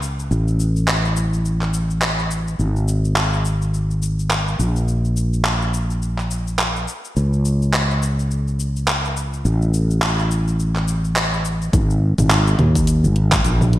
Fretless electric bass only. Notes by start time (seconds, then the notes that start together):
Already playing: C#2
0.31 A1
2.59 G#1
4.59 A#1
7.17 C#2
9.45 A1
11.73 G#1
12.18 G#1
12.59 D#2
13.04 G#1
13.45 A#1